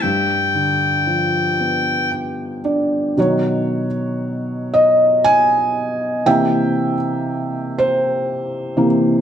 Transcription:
0.02 3.13 G2 soft
0.02 2.11 G5 medium
0.55 2.60 D3 soft
1.07 3.14 F3 soft
1.60 3.14 B3 soft
2.12 2.61 G5 soft
2.65 3.16 D4 soft
2.65 3.14 D5 soft
3.17 3.87 B2 soft
3.17 3.87 D#3 soft
3.17 3.87 F#3 soft
3.17 4.69 F#4 medium
3.17 4.70 C#5 medium
4.74 5.20 D#5 medium
5.24 6.30 G#5 loud
6.26 6.94 C3 medium
6.26 6.95 E3 soft
6.26 6.95 A#3 soft
6.26 7.75 E5 medium
6.26 7.75 G5 loud
7.78 8.86 C5 medium
8.77 9.21 C3 medium
8.77 9.21 E3 soft
8.77 9.21 A#3 medium

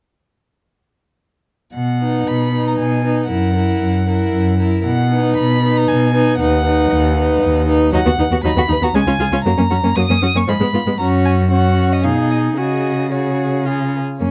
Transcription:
1.74 2.21 B2 soft
1.74 2.29 F#5 soft
2.00 2.52 D#4 soft
2.00 2.53 B4 soft
2.27 2.73 B2 soft
2.27 2.66 B5 soft
2.53 3.04 D#4 soft
2.53 3.04 B4 soft
2.67 2.72 A#5 soft
2.79 3.24 B2 soft
2.79 3.28 G#5 medium
3.04 3.29 D#4 soft
3.04 3.30 B4 soft
3.29 3.76 F#2 soft
3.29 3.55 E4 soft
3.29 3.55 A#4 soft
3.29 4.56 F#5 soft
3.56 4.07 E4 soft
3.56 4.07 A#4 soft
3.82 4.28 F#2 soft
4.08 4.58 E4 soft
4.08 4.59 A#4 soft
4.33 4.79 F#2 soft
4.59 4.85 E4 soft
4.59 4.85 A#4 soft
4.85 5.31 B2 soft
4.85 5.34 F#5 medium
5.11 5.62 D#4 soft
5.11 5.63 B4 soft
5.37 5.83 B2 medium
5.37 5.79 B5 medium
5.63 6.14 D#4 soft
5.63 6.14 B4 soft
5.77 5.90 A#5 medium
5.88 6.34 B2 soft
5.88 6.40 G#5 medium
6.14 6.39 D#4 soft
6.14 6.39 B4 soft
6.39 6.85 D#2 medium
6.39 6.64 D#4 soft
6.39 6.65 B4 soft
6.39 7.65 F#5 medium
6.65 7.15 D#4 soft
6.65 7.15 B4 soft
6.91 7.36 D#2 medium
7.16 7.66 D#4 soft
7.16 7.67 B4 medium
7.42 7.87 D#2 medium
7.67 7.92 D#4 medium
7.67 7.93 B4 soft
7.93 7.99 D#2 medium
7.93 7.98 F#3 medium
7.93 7.99 D#4 medium
7.93 8.40 F#5 medium
8.05 8.11 D#2 soft
8.05 8.11 B3 medium
8.05 8.11 F#4 soft
8.19 8.24 D#2 soft
8.19 8.24 D#4 soft
8.19 8.25 B4 soft
8.31 8.36 D#2 soft
8.31 8.37 B3 soft
8.31 8.37 F#4 soft
8.44 8.49 D#2 medium
8.44 8.49 F#3 medium
8.44 8.50 D#4 medium
8.44 8.84 B5 medium
8.56 8.62 D#2 soft
8.56 8.61 B3 soft
8.56 8.63 F#4 soft
8.68 8.74 D#2 soft
8.68 8.74 D#4 soft
8.68 8.76 B4 soft
8.81 8.87 D#2 soft
8.81 8.87 B3 medium
8.81 8.88 F#4 soft
8.81 8.97 A#5 medium
8.94 8.99 C#2 medium
8.94 9.00 G#3 medium
8.94 9.00 C#4 medium
8.94 9.44 G#5 medium
9.07 9.12 C#2 soft
9.07 9.12 C#4 soft
9.07 9.12 F4 soft
9.19 9.25 C#2 soft
9.19 9.25 F4 medium
9.19 9.25 G#4 soft
9.32 9.37 C#2 soft
9.32 9.38 C#4 soft
9.32 9.38 F4 soft
9.44 9.50 F#2 medium
9.44 9.51 F#3 medium
9.44 9.51 A#3 medium
9.44 9.97 A#5 medium
9.57 9.63 F#2 soft
9.57 9.64 A#3 soft
9.57 9.63 C#4 soft
9.70 9.76 F#2 soft
9.70 9.76 C#4 soft
9.70 9.76 F#4 soft
9.83 9.88 F#2 soft
9.83 9.89 A#3 soft
9.83 9.89 C#4 soft
9.96 10.01 F#2 medium
9.96 10.02 F#3 medium
9.96 10.01 A#3 medium
9.96 10.38 D#6 medium
10.09 10.15 F#2 soft
10.09 10.15 A#3 soft
10.09 10.15 C#4 soft
10.22 10.27 F#2 soft
10.22 10.27 C#4 soft
10.22 10.28 F#4 soft
10.34 10.40 F#2 soft
10.34 10.40 A#3 soft
10.34 10.41 C#4 soft
10.34 10.50 C#6 medium
10.48 10.53 G#2 medium
10.48 10.53 F3 medium
10.48 10.54 G#3 medium
10.48 10.98 B5 medium
10.60 10.66 G#2 soft
10.60 10.66 G#3 soft
10.60 10.67 B3 soft
10.73 10.78 G#2 soft
10.73 10.79 B3 soft
10.73 10.79 F4 soft
10.86 10.92 G#2 soft
10.86 10.92 G#3 soft
10.86 10.92 B3 soft
10.99 12.06 F#2 medium
10.99 11.47 C#4 soft
10.99 11.47 F#4 soft
10.99 11.07 A#5 medium
11.25 11.33 G#5 medium
11.51 12.05 C#4 soft
11.51 12.03 F#4 soft
11.51 11.94 F#5 medium
11.93 12.06 D#5 soft
12.04 12.57 B2 soft
12.04 12.59 D#4 soft
12.04 12.56 G#4 soft
12.04 12.30 F5 soft
12.31 12.39 D#5 soft
12.57 13.97 C#3 soft
12.57 13.11 F#4 soft
12.57 13.11 G#4 soft
12.57 13.13 D#5 soft
13.12 13.67 F#4 soft
13.12 13.65 G#4 soft
13.12 13.66 C#5 soft
13.66 14.00 F4 soft
13.66 13.99 G#4 soft
14.20 14.28 F#2 soft
14.20 14.28 A#3 soft
14.20 14.31 C#4 soft
14.20 14.31 C#5 soft

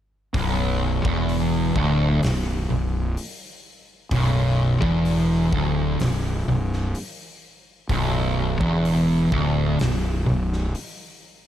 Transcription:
0.34 1.01 B0 medium
0.34 1.03 B1 loud
0.34 kick loud
0.34 open hi-hat medium
1.05 1.72 E1 medium
1.05 1.75 E2 loud
1.05 kick loud
1.29 open hi-hat medium
1.76 2.19 D1 loud
1.76 2.22 D2 loud
1.76 kick loud
2.23 2.67 B0 medium
2.23 2.61 B1 medium
2.23 snare loud
2.23 open hi-hat medium
2.70 3.14 B0 medium
2.70 3.08 B1 medium
3.17 open hi-hat medium
4.11 4.79 B0 loud
4.11 4.81 B1 loud
4.11 kick loud
4.11 open hi-hat medium
4.82 5.49 E1 medium
4.82 5.52 E2 loud
4.82 kick loud
5.05 open hi-hat medium
5.53 5.97 D1 loud
5.53 6.00 D2 loud
5.53 kick loud
6.00 6.45 B0 medium
6.00 6.39 B1 medium
6.00 snare loud
6.00 open hi-hat medium
6.48 6.92 B0 medium
6.48 6.86 B1 medium
6.73 snare soft
6.95 open hi-hat medium
7.89 8.57 B0 loud
7.89 8.60 B1 loud
7.89 kick loud
7.89 open hi-hat medium
8.60 9.28 E1 medium
8.60 9.31 E2 loud
8.60 kick loud
8.85 open hi-hat medium
9.32 9.77 D1 loud
9.32 9.78 D2 loud
9.32 kick loud
9.79 10.25 B0 medium
9.79 10.18 B1 medium
9.79 snare loud
9.79 open hi-hat medium
10.26 10.72 B0 medium
10.26 10.65 B1 medium
10.53 snare soft
10.75 open hi-hat medium

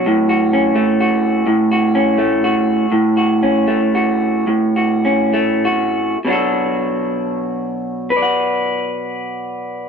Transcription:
0.00 0.75 F#3 soft
0.00 0.29 F#4 medium
0.06 1.46 A2 medium
0.29 1.00 F#4 soft
0.53 1.93 C#4 soft
0.75 2.18 A3 soft
1.00 1.71 F#4 soft
1.47 2.85 A2 medium
1.72 2.44 F#4 soft
1.95 2.85 C#4 soft
2.18 3.67 A3 soft
2.44 3.17 F#4 soft
2.92 4.46 A2 medium
3.17 3.94 F#4 soft
3.43 5.03 C#4 soft
3.67 5.32 A3 soft
3.95 4.75 F#4 soft
4.47 6.15 A2 medium
4.76 5.62 F#4 soft
5.05 6.16 C#4 soft
5.34 6.16 A3 soft
5.65 6.17 F#4 soft
6.25 9.89 B2 soft
6.25 9.89 F#3 soft
6.25 8.10 D4 soft
6.30 8.16 F#4 soft
6.30 8.13 A4 soft
8.10 9.89 B4 soft
8.17 9.89 D5 soft
8.22 9.89 F#5 soft

